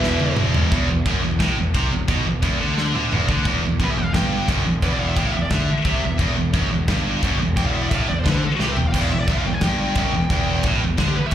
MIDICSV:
0, 0, Header, 1, 9, 480
1, 0, Start_track
1, 0, Key_signature, 1, "minor"
1, 0, Tempo, 342270
1, 1015, Time_signature, 4, 2, 24, 8
1, 15912, End_track
2, 0, Start_track
2, 0, Title_t, "Lead electric guitar"
2, 0, Program_c, 0, 29
2, 0, Note_on_c, 0, 76, 98
2, 476, Note_off_c, 0, 76, 0
2, 5389, Note_on_c, 0, 71, 69
2, 5470, Note_on_c, 0, 76, 77
2, 5478, Note_off_c, 0, 71, 0
2, 5575, Note_off_c, 0, 76, 0
2, 5575, Note_on_c, 0, 79, 107
2, 5671, Note_off_c, 0, 79, 0
2, 5671, Note_on_c, 0, 77, 72
2, 5798, Note_off_c, 0, 77, 0
2, 5804, Note_on_c, 0, 79, 83
2, 6254, Note_off_c, 0, 79, 0
2, 6778, Note_on_c, 0, 71, 77
2, 6892, Note_off_c, 0, 71, 0
2, 6910, Note_on_c, 0, 74, 75
2, 7005, Note_off_c, 0, 74, 0
2, 7011, Note_on_c, 0, 77, 119
2, 7128, Note_off_c, 0, 77, 0
2, 7134, Note_on_c, 0, 76, 80
2, 7242, Note_on_c, 0, 79, 94
2, 7250, Note_off_c, 0, 76, 0
2, 7363, Note_off_c, 0, 79, 0
2, 7365, Note_on_c, 0, 77, 77
2, 7461, Note_off_c, 0, 77, 0
2, 7467, Note_on_c, 0, 76, 88
2, 7596, Note_off_c, 0, 76, 0
2, 7611, Note_on_c, 0, 74, 76
2, 7724, Note_off_c, 0, 74, 0
2, 7730, Note_on_c, 0, 76, 78
2, 8636, Note_off_c, 0, 76, 0
2, 10613, Note_on_c, 0, 79, 86
2, 10730, Note_off_c, 0, 79, 0
2, 10732, Note_on_c, 0, 77, 90
2, 10825, Note_off_c, 0, 77, 0
2, 10831, Note_on_c, 0, 76, 108
2, 10959, Note_off_c, 0, 76, 0
2, 10975, Note_on_c, 0, 74, 95
2, 11065, Note_off_c, 0, 74, 0
2, 11070, Note_on_c, 0, 76, 100
2, 11152, Note_off_c, 0, 76, 0
2, 11158, Note_on_c, 0, 77, 103
2, 11232, Note_off_c, 0, 77, 0
2, 11237, Note_on_c, 0, 76, 85
2, 11324, Note_off_c, 0, 76, 0
2, 11338, Note_on_c, 0, 74, 102
2, 11453, Note_off_c, 0, 74, 0
2, 11487, Note_on_c, 0, 72, 84
2, 11588, Note_off_c, 0, 72, 0
2, 11620, Note_on_c, 0, 71, 93
2, 11715, Note_off_c, 0, 71, 0
2, 11747, Note_on_c, 0, 72, 100
2, 11838, Note_off_c, 0, 72, 0
2, 11849, Note_on_c, 0, 69, 91
2, 11949, Note_off_c, 0, 69, 0
2, 11994, Note_on_c, 0, 66, 84
2, 12082, Note_off_c, 0, 66, 0
2, 12102, Note_on_c, 0, 67, 93
2, 12157, Note_off_c, 0, 67, 0
2, 12173, Note_on_c, 0, 71, 96
2, 12225, Note_on_c, 0, 76, 106
2, 12233, Note_off_c, 0, 71, 0
2, 12298, Note_off_c, 0, 76, 0
2, 12299, Note_on_c, 0, 79, 117
2, 12414, Note_off_c, 0, 79, 0
2, 12444, Note_on_c, 0, 77, 81
2, 12512, Note_on_c, 0, 79, 108
2, 12546, Note_off_c, 0, 77, 0
2, 12628, Note_on_c, 0, 77, 88
2, 12640, Note_off_c, 0, 79, 0
2, 12758, Note_off_c, 0, 77, 0
2, 12788, Note_on_c, 0, 76, 119
2, 12896, Note_off_c, 0, 76, 0
2, 12902, Note_on_c, 0, 74, 87
2, 13013, Note_off_c, 0, 74, 0
2, 13019, Note_on_c, 0, 76, 95
2, 13134, Note_off_c, 0, 76, 0
2, 13156, Note_on_c, 0, 77, 90
2, 13263, Note_off_c, 0, 77, 0
2, 13283, Note_on_c, 0, 79, 108
2, 13374, Note_off_c, 0, 79, 0
2, 13374, Note_on_c, 0, 80, 111
2, 13491, Note_off_c, 0, 80, 0
2, 13510, Note_on_c, 0, 79, 98
2, 14887, Note_off_c, 0, 79, 0
2, 15540, Note_on_c, 0, 67, 73
2, 15655, Note_off_c, 0, 67, 0
2, 15657, Note_on_c, 0, 71, 96
2, 15773, Note_off_c, 0, 71, 0
2, 15795, Note_on_c, 0, 76, 95
2, 15902, Note_off_c, 0, 76, 0
2, 15912, End_track
3, 0, Start_track
3, 0, Title_t, "Lead electric guitar"
3, 0, Program_c, 1, 29
3, 0, Note_on_c, 1, 71, 89
3, 502, Note_off_c, 1, 71, 0
3, 15912, End_track
4, 0, Start_track
4, 0, Title_t, "Distorted electric guitar"
4, 0, Program_c, 2, 30
4, 0, Note_on_c, 2, 40, 91
4, 0, Note_on_c, 2, 47, 99
4, 0, Note_on_c, 2, 52, 107
4, 994, Note_off_c, 2, 40, 0
4, 1003, Note_off_c, 2, 47, 0
4, 1015, Note_off_c, 2, 52, 0
4, 15912, End_track
5, 0, Start_track
5, 0, Title_t, "Distorted electric guitar"
5, 0, Program_c, 3, 30
5, 0, Note_on_c, 3, 40, 89
5, 0, Note_on_c, 3, 47, 104
5, 0, Note_on_c, 3, 52, 98
5, 519, Note_off_c, 3, 40, 0
5, 521, Note_off_c, 3, 52, 0
5, 533, Note_off_c, 3, 47, 0
5, 536, Note_on_c, 3, 40, 70
5, 556, Note_on_c, 3, 47, 82
5, 590, Note_on_c, 3, 52, 95
5, 992, Note_off_c, 3, 40, 0
5, 1009, Note_on_c, 3, 40, 125
5, 1011, Note_off_c, 3, 47, 0
5, 1027, Note_off_c, 3, 52, 0
5, 1234, Note_off_c, 3, 40, 0
5, 1251, Note_on_c, 3, 40, 66
5, 1444, Note_off_c, 3, 40, 0
5, 1497, Note_on_c, 3, 42, 121
5, 1728, Note_off_c, 3, 42, 0
5, 1739, Note_on_c, 3, 40, 76
5, 1928, Note_off_c, 3, 40, 0
5, 1972, Note_on_c, 3, 45, 106
5, 2205, Note_off_c, 3, 45, 0
5, 2206, Note_on_c, 3, 40, 69
5, 2401, Note_off_c, 3, 40, 0
5, 2447, Note_on_c, 3, 48, 102
5, 2682, Note_off_c, 3, 48, 0
5, 2682, Note_on_c, 3, 40, 72
5, 2879, Note_off_c, 3, 40, 0
5, 2920, Note_on_c, 3, 47, 123
5, 3158, Note_off_c, 3, 47, 0
5, 3166, Note_on_c, 3, 40, 71
5, 3361, Note_off_c, 3, 40, 0
5, 3395, Note_on_c, 3, 40, 122
5, 3636, Note_off_c, 3, 40, 0
5, 3638, Note_on_c, 3, 50, 107
5, 4117, Note_off_c, 3, 50, 0
5, 4133, Note_on_c, 3, 50, 107
5, 4365, Note_off_c, 3, 50, 0
5, 4377, Note_on_c, 3, 40, 97
5, 4607, Note_off_c, 3, 40, 0
5, 4610, Note_on_c, 3, 50, 106
5, 4843, Note_off_c, 3, 50, 0
5, 4864, Note_on_c, 3, 40, 122
5, 5088, Note_off_c, 3, 40, 0
5, 5105, Note_on_c, 3, 40, 57
5, 5290, Note_off_c, 3, 40, 0
5, 5330, Note_on_c, 3, 42, 108
5, 5564, Note_off_c, 3, 42, 0
5, 5581, Note_on_c, 3, 40, 85
5, 5768, Note_off_c, 3, 40, 0
5, 5818, Note_on_c, 3, 43, 109
5, 6288, Note_off_c, 3, 43, 0
5, 6306, Note_on_c, 3, 42, 97
5, 6532, Note_off_c, 3, 42, 0
5, 6543, Note_on_c, 3, 40, 83
5, 6730, Note_off_c, 3, 40, 0
5, 6785, Note_on_c, 3, 40, 109
5, 7251, Note_off_c, 3, 40, 0
5, 7279, Note_on_c, 3, 45, 107
5, 7499, Note_off_c, 3, 45, 0
5, 7515, Note_on_c, 3, 40, 75
5, 7696, Note_off_c, 3, 40, 0
5, 7751, Note_on_c, 3, 50, 110
5, 7975, Note_off_c, 3, 50, 0
5, 8220, Note_on_c, 3, 48, 102
5, 8449, Note_off_c, 3, 48, 0
5, 8462, Note_on_c, 3, 40, 77
5, 8650, Note_off_c, 3, 40, 0
5, 8666, Note_on_c, 3, 40, 114
5, 8912, Note_off_c, 3, 40, 0
5, 8934, Note_on_c, 3, 40, 71
5, 9126, Note_off_c, 3, 40, 0
5, 9160, Note_on_c, 3, 42, 102
5, 9399, Note_off_c, 3, 42, 0
5, 9404, Note_on_c, 3, 40, 84
5, 9601, Note_off_c, 3, 40, 0
5, 9649, Note_on_c, 3, 43, 102
5, 10124, Note_off_c, 3, 43, 0
5, 10143, Note_on_c, 3, 42, 88
5, 10371, Note_off_c, 3, 42, 0
5, 10403, Note_on_c, 3, 40, 82
5, 10581, Note_off_c, 3, 40, 0
5, 10635, Note_on_c, 3, 40, 127
5, 11098, Note_off_c, 3, 40, 0
5, 11107, Note_on_c, 3, 45, 100
5, 11334, Note_off_c, 3, 45, 0
5, 11353, Note_on_c, 3, 40, 76
5, 11536, Note_off_c, 3, 40, 0
5, 11588, Note_on_c, 3, 50, 114
5, 11815, Note_off_c, 3, 50, 0
5, 12068, Note_on_c, 3, 48, 99
5, 12295, Note_off_c, 3, 48, 0
5, 12331, Note_on_c, 3, 40, 80
5, 12506, Note_off_c, 3, 40, 0
5, 12560, Note_on_c, 3, 40, 127
5, 12781, Note_off_c, 3, 40, 0
5, 12798, Note_on_c, 3, 40, 64
5, 12979, Note_off_c, 3, 40, 0
5, 13034, Note_on_c, 3, 42, 111
5, 13258, Note_off_c, 3, 42, 0
5, 13278, Note_on_c, 3, 40, 82
5, 13459, Note_off_c, 3, 40, 0
5, 13516, Note_on_c, 3, 43, 106
5, 13979, Note_off_c, 3, 43, 0
5, 13985, Note_on_c, 3, 42, 98
5, 14214, Note_off_c, 3, 42, 0
5, 14222, Note_on_c, 3, 40, 85
5, 14411, Note_off_c, 3, 40, 0
5, 14459, Note_on_c, 3, 40, 124
5, 14931, Note_off_c, 3, 40, 0
5, 14952, Note_on_c, 3, 45, 110
5, 15170, Note_on_c, 3, 40, 77
5, 15177, Note_off_c, 3, 45, 0
5, 15365, Note_off_c, 3, 40, 0
5, 15396, Note_on_c, 3, 50, 108
5, 15639, Note_off_c, 3, 50, 0
5, 15912, End_track
6, 0, Start_track
6, 0, Title_t, "Picked electric bass"
6, 0, Program_c, 4, 34
6, 50, Note_on_c, 4, 28, 106
6, 272, Note_off_c, 4, 28, 0
6, 303, Note_on_c, 4, 28, 99
6, 519, Note_off_c, 4, 28, 0
6, 553, Note_on_c, 4, 28, 87
6, 764, Note_off_c, 4, 28, 0
6, 776, Note_on_c, 4, 28, 108
6, 995, Note_off_c, 4, 28, 0
6, 1002, Note_on_c, 4, 28, 85
6, 1231, Note_off_c, 4, 28, 0
6, 1264, Note_on_c, 4, 28, 77
6, 1475, Note_off_c, 4, 28, 0
6, 1484, Note_on_c, 4, 30, 100
6, 1711, Note_off_c, 4, 30, 0
6, 1749, Note_on_c, 4, 28, 79
6, 1947, Note_off_c, 4, 28, 0
6, 1956, Note_on_c, 4, 33, 105
6, 2187, Note_off_c, 4, 33, 0
6, 2221, Note_on_c, 4, 28, 77
6, 2440, Note_off_c, 4, 28, 0
6, 2448, Note_on_c, 4, 36, 88
6, 2673, Note_off_c, 4, 36, 0
6, 2696, Note_on_c, 4, 28, 87
6, 2917, Note_off_c, 4, 28, 0
6, 2924, Note_on_c, 4, 35, 92
6, 3143, Note_off_c, 4, 35, 0
6, 3152, Note_on_c, 4, 28, 75
6, 3384, Note_off_c, 4, 28, 0
6, 3396, Note_on_c, 4, 28, 105
6, 3627, Note_off_c, 4, 28, 0
6, 3646, Note_on_c, 4, 38, 106
6, 4095, Note_off_c, 4, 38, 0
6, 4120, Note_on_c, 4, 38, 99
6, 4349, Note_off_c, 4, 38, 0
6, 4355, Note_on_c, 4, 28, 94
6, 4586, Note_off_c, 4, 28, 0
6, 4607, Note_on_c, 4, 38, 100
6, 4825, Note_off_c, 4, 38, 0
6, 4834, Note_on_c, 4, 28, 92
6, 5065, Note_off_c, 4, 28, 0
6, 5092, Note_on_c, 4, 28, 84
6, 5307, Note_off_c, 4, 28, 0
6, 5315, Note_on_c, 4, 30, 103
6, 5546, Note_off_c, 4, 30, 0
6, 5582, Note_on_c, 4, 28, 79
6, 5797, Note_off_c, 4, 28, 0
6, 5805, Note_on_c, 4, 31, 89
6, 6255, Note_off_c, 4, 31, 0
6, 6284, Note_on_c, 4, 30, 105
6, 6511, Note_off_c, 4, 30, 0
6, 6527, Note_on_c, 4, 28, 85
6, 6753, Note_off_c, 4, 28, 0
6, 6763, Note_on_c, 4, 28, 91
6, 7214, Note_off_c, 4, 28, 0
6, 7240, Note_on_c, 4, 33, 98
6, 7469, Note_off_c, 4, 33, 0
6, 7477, Note_on_c, 4, 28, 86
6, 7707, Note_off_c, 4, 28, 0
6, 7714, Note_on_c, 4, 38, 96
6, 7946, Note_off_c, 4, 38, 0
6, 8196, Note_on_c, 4, 36, 87
6, 8427, Note_off_c, 4, 36, 0
6, 8451, Note_on_c, 4, 28, 87
6, 8669, Note_off_c, 4, 28, 0
6, 8677, Note_on_c, 4, 28, 87
6, 8908, Note_off_c, 4, 28, 0
6, 8938, Note_on_c, 4, 28, 79
6, 9159, Note_off_c, 4, 28, 0
6, 9165, Note_on_c, 4, 30, 99
6, 9392, Note_off_c, 4, 30, 0
6, 9419, Note_on_c, 4, 28, 76
6, 9635, Note_off_c, 4, 28, 0
6, 9643, Note_on_c, 4, 31, 97
6, 10095, Note_off_c, 4, 31, 0
6, 10137, Note_on_c, 4, 30, 102
6, 10359, Note_off_c, 4, 30, 0
6, 10398, Note_on_c, 4, 28, 88
6, 10610, Note_off_c, 4, 28, 0
6, 10618, Note_on_c, 4, 28, 82
6, 11063, Note_off_c, 4, 28, 0
6, 11093, Note_on_c, 4, 33, 88
6, 11317, Note_off_c, 4, 33, 0
6, 11353, Note_on_c, 4, 28, 74
6, 11568, Note_off_c, 4, 28, 0
6, 11579, Note_on_c, 4, 38, 99
6, 11801, Note_off_c, 4, 38, 0
6, 12066, Note_on_c, 4, 36, 104
6, 12285, Note_off_c, 4, 36, 0
6, 12314, Note_on_c, 4, 28, 85
6, 12524, Note_off_c, 4, 28, 0
6, 12533, Note_on_c, 4, 28, 75
6, 12758, Note_off_c, 4, 28, 0
6, 12783, Note_on_c, 4, 28, 73
6, 12997, Note_off_c, 4, 28, 0
6, 13005, Note_on_c, 4, 30, 106
6, 13233, Note_off_c, 4, 30, 0
6, 13266, Note_on_c, 4, 28, 78
6, 13477, Note_off_c, 4, 28, 0
6, 13485, Note_on_c, 4, 31, 88
6, 13937, Note_off_c, 4, 31, 0
6, 13958, Note_on_c, 4, 30, 87
6, 14190, Note_off_c, 4, 30, 0
6, 14209, Note_on_c, 4, 28, 83
6, 14436, Note_off_c, 4, 28, 0
6, 14445, Note_on_c, 4, 28, 81
6, 14897, Note_off_c, 4, 28, 0
6, 14909, Note_on_c, 4, 33, 95
6, 15145, Note_off_c, 4, 33, 0
6, 15169, Note_on_c, 4, 28, 74
6, 15390, Note_off_c, 4, 28, 0
6, 15398, Note_on_c, 4, 38, 96
6, 15630, Note_off_c, 4, 38, 0
6, 15912, End_track
7, 0, Start_track
7, 0, Title_t, "Muted distorted electric guitar strokes"
7, 7976, Note_on_c, 9, 29, 57
7, 8116, Note_off_c, 9, 29, 0
7, 11836, Note_on_c, 9, 29, 55
7, 11976, Note_off_c, 9, 29, 0
7, 15663, Note_on_c, 9, 29, 61
7, 15804, Note_off_c, 9, 29, 0
7, 15912, End_track
8, 0, Start_track
8, 0, Title_t, "Muted picked electric bass strokes"
8, 7982, Note_on_c, 9, 29, 44
8, 8123, Note_off_c, 9, 29, 0
8, 11840, Note_on_c, 9, 29, 45
8, 11980, Note_off_c, 9, 29, 0
8, 15666, Note_on_c, 9, 29, 44
8, 15806, Note_off_c, 9, 29, 0
8, 15912, End_track
9, 0, Start_track
9, 0, Title_t, "Drums"
9, 46, Note_on_c, 9, 38, 62
9, 186, Note_off_c, 9, 38, 0
9, 279, Note_on_c, 9, 48, 64
9, 419, Note_off_c, 9, 48, 0
9, 512, Note_on_c, 9, 45, 113
9, 652, Note_off_c, 9, 45, 0
9, 763, Note_on_c, 9, 43, 107
9, 904, Note_off_c, 9, 43, 0
9, 1007, Note_on_c, 9, 36, 108
9, 1007, Note_on_c, 9, 52, 57
9, 1147, Note_off_c, 9, 36, 0
9, 1148, Note_off_c, 9, 52, 0
9, 1483, Note_on_c, 9, 36, 101
9, 1485, Note_on_c, 9, 52, 65
9, 1623, Note_off_c, 9, 36, 0
9, 1626, Note_off_c, 9, 52, 0
9, 1965, Note_on_c, 9, 36, 103
9, 1966, Note_on_c, 9, 52, 63
9, 1971, Note_on_c, 9, 38, 109
9, 2105, Note_off_c, 9, 36, 0
9, 2106, Note_off_c, 9, 52, 0
9, 2112, Note_off_c, 9, 38, 0
9, 2448, Note_on_c, 9, 36, 106
9, 2452, Note_on_c, 9, 52, 63
9, 2588, Note_off_c, 9, 36, 0
9, 2592, Note_off_c, 9, 52, 0
9, 2922, Note_on_c, 9, 36, 111
9, 2935, Note_on_c, 9, 52, 58
9, 3062, Note_off_c, 9, 36, 0
9, 3075, Note_off_c, 9, 52, 0
9, 3402, Note_on_c, 9, 52, 61
9, 3403, Note_on_c, 9, 36, 97
9, 3542, Note_off_c, 9, 52, 0
9, 3543, Note_off_c, 9, 36, 0
9, 3893, Note_on_c, 9, 38, 58
9, 4033, Note_off_c, 9, 38, 0
9, 4140, Note_on_c, 9, 47, 66
9, 4280, Note_off_c, 9, 47, 0
9, 4384, Note_on_c, 9, 45, 87
9, 4524, Note_off_c, 9, 45, 0
9, 4608, Note_on_c, 9, 36, 91
9, 4748, Note_off_c, 9, 36, 0
9, 4841, Note_on_c, 9, 52, 56
9, 4843, Note_on_c, 9, 36, 98
9, 4981, Note_off_c, 9, 52, 0
9, 4983, Note_off_c, 9, 36, 0
9, 5324, Note_on_c, 9, 36, 96
9, 5334, Note_on_c, 9, 52, 60
9, 5464, Note_off_c, 9, 36, 0
9, 5475, Note_off_c, 9, 52, 0
9, 5810, Note_on_c, 9, 36, 84
9, 5810, Note_on_c, 9, 52, 61
9, 5815, Note_on_c, 9, 38, 98
9, 5950, Note_off_c, 9, 36, 0
9, 5950, Note_off_c, 9, 52, 0
9, 5956, Note_off_c, 9, 38, 0
9, 6289, Note_on_c, 9, 36, 103
9, 6295, Note_on_c, 9, 52, 62
9, 6429, Note_off_c, 9, 36, 0
9, 6435, Note_off_c, 9, 52, 0
9, 6765, Note_on_c, 9, 36, 98
9, 6770, Note_on_c, 9, 52, 57
9, 6906, Note_off_c, 9, 36, 0
9, 6910, Note_off_c, 9, 52, 0
9, 7244, Note_on_c, 9, 36, 102
9, 7249, Note_on_c, 9, 52, 65
9, 7384, Note_off_c, 9, 36, 0
9, 7389, Note_off_c, 9, 52, 0
9, 7719, Note_on_c, 9, 52, 59
9, 7724, Note_on_c, 9, 38, 105
9, 7725, Note_on_c, 9, 36, 99
9, 7859, Note_off_c, 9, 52, 0
9, 7865, Note_off_c, 9, 36, 0
9, 7865, Note_off_c, 9, 38, 0
9, 8203, Note_on_c, 9, 36, 110
9, 8205, Note_on_c, 9, 52, 59
9, 8343, Note_off_c, 9, 36, 0
9, 8345, Note_off_c, 9, 52, 0
9, 8683, Note_on_c, 9, 36, 96
9, 8685, Note_on_c, 9, 52, 56
9, 8823, Note_off_c, 9, 36, 0
9, 8825, Note_off_c, 9, 52, 0
9, 9168, Note_on_c, 9, 36, 108
9, 9181, Note_on_c, 9, 52, 60
9, 9308, Note_off_c, 9, 36, 0
9, 9321, Note_off_c, 9, 52, 0
9, 9647, Note_on_c, 9, 52, 54
9, 9650, Note_on_c, 9, 36, 105
9, 9653, Note_on_c, 9, 38, 99
9, 9787, Note_off_c, 9, 52, 0
9, 9790, Note_off_c, 9, 36, 0
9, 9793, Note_off_c, 9, 38, 0
9, 10137, Note_on_c, 9, 36, 102
9, 10153, Note_on_c, 9, 52, 58
9, 10277, Note_off_c, 9, 36, 0
9, 10293, Note_off_c, 9, 52, 0
9, 10616, Note_on_c, 9, 36, 109
9, 10626, Note_on_c, 9, 52, 64
9, 10756, Note_off_c, 9, 36, 0
9, 10766, Note_off_c, 9, 52, 0
9, 11097, Note_on_c, 9, 36, 108
9, 11101, Note_on_c, 9, 52, 64
9, 11237, Note_off_c, 9, 36, 0
9, 11241, Note_off_c, 9, 52, 0
9, 11577, Note_on_c, 9, 52, 54
9, 11579, Note_on_c, 9, 36, 93
9, 11583, Note_on_c, 9, 38, 113
9, 11717, Note_off_c, 9, 52, 0
9, 11719, Note_off_c, 9, 36, 0
9, 11723, Note_off_c, 9, 38, 0
9, 12055, Note_on_c, 9, 38, 66
9, 12196, Note_off_c, 9, 38, 0
9, 12294, Note_on_c, 9, 43, 81
9, 12434, Note_off_c, 9, 43, 0
9, 12535, Note_on_c, 9, 36, 97
9, 12535, Note_on_c, 9, 49, 90
9, 12535, Note_on_c, 9, 52, 58
9, 12675, Note_off_c, 9, 36, 0
9, 12675, Note_off_c, 9, 49, 0
9, 12675, Note_off_c, 9, 52, 0
9, 13011, Note_on_c, 9, 36, 114
9, 13011, Note_on_c, 9, 52, 57
9, 13151, Note_off_c, 9, 36, 0
9, 13152, Note_off_c, 9, 52, 0
9, 13476, Note_on_c, 9, 52, 53
9, 13482, Note_on_c, 9, 38, 98
9, 13488, Note_on_c, 9, 36, 96
9, 13616, Note_off_c, 9, 52, 0
9, 13622, Note_off_c, 9, 38, 0
9, 13628, Note_off_c, 9, 36, 0
9, 13956, Note_on_c, 9, 52, 59
9, 13965, Note_on_c, 9, 36, 102
9, 14096, Note_off_c, 9, 52, 0
9, 14105, Note_off_c, 9, 36, 0
9, 14446, Note_on_c, 9, 36, 101
9, 14448, Note_on_c, 9, 52, 63
9, 14586, Note_off_c, 9, 36, 0
9, 14588, Note_off_c, 9, 52, 0
9, 14909, Note_on_c, 9, 52, 61
9, 14920, Note_on_c, 9, 36, 110
9, 15049, Note_off_c, 9, 52, 0
9, 15060, Note_off_c, 9, 36, 0
9, 15397, Note_on_c, 9, 52, 56
9, 15402, Note_on_c, 9, 36, 87
9, 15402, Note_on_c, 9, 38, 91
9, 15537, Note_off_c, 9, 52, 0
9, 15542, Note_off_c, 9, 36, 0
9, 15543, Note_off_c, 9, 38, 0
9, 15863, Note_on_c, 9, 52, 55
9, 15912, Note_off_c, 9, 52, 0
9, 15912, End_track
0, 0, End_of_file